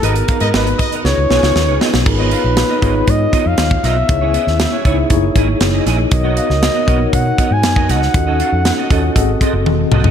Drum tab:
CC |----------------|x---------------|----------------|----------------|
HH |xxxx-xxx--------|--x-x-x-x-x-x-x-|x-x-x-x-x-x-x-x-|x-x-x-x-x-x-x-x-|
SD |----o---o-ooo-oo|----o-------o-o-|---oo-------o-o-|---oo-------o-oo|
T1 |----------------|----------------|----------------|----------------|
T2 |----------------|----------------|----------------|----------------|
FT |----------------|----------------|----------------|----------------|
BD |--o---o---------|o-----o-o-o--o--|o-----o-o-o-----|o-----o-o-o--o--|

CC |----------------|
HH |x-x-x-x-x-x-----|
SD |----o-----------|
T1 |------------o---|
T2 |--------------o-|
FT |---------------o|
BD |o-----o-o-o-----|